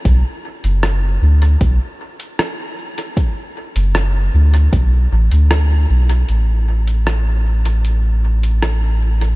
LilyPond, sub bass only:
\new Staff \with { instrumentName = "Sub bass" } { \clef bass \time 4/4 \key b \phrygian \tempo 4 = 77 b,,16 r8 fis,,8. d,8 b,,16 r4. r16 | r8. fis,,8. d,8 b,,8 a,,16 d,8. b,,8 | a,,1 | }